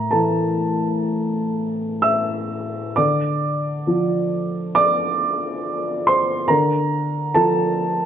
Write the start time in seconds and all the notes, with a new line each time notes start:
Already playing: A2 A#4 A#5
0.11 E3 A4 A5
2.02 E5 E6
2.96 D3 D5 D6
3.87 F3
4.75 D5 D6
6.07 C5 C6
6.48 D3 A#4 A#5
7.35 F3 A4 A5